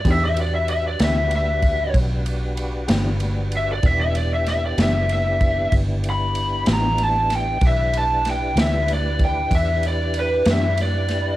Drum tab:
RD |xxxxxxxxxxxx|xxxxxxxxxxxx|xxxxxxxxxxxx|
SD |---o-----o--|--oo-----o-o|--oo-----o-o|
BD |o----oo-----|o----oo-----|o----oo-----|